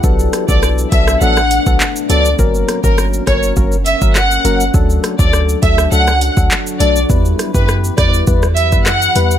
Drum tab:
HH |--x---x---x---x-|--x---x---x---x-|--x---x---x---x-|--x---x---x---x-|
SH |xxxxxxxxxxxxxxxx|xxxxxxxxxxxxxxxx|xxxxxxxxxxxxxxxx|xxxxxxxxxxxxxxxx|
CP |------------x---|------------x---|------------x---|------------x---|
SD |--r-r--r-r------|--r-r-r-----r---|--r-r--r-r------|--r-r-r--r--r---|
BD |o--o--o----o----|o--o--o-o--o----|o--o--o----o----|o--o--o-o--o----|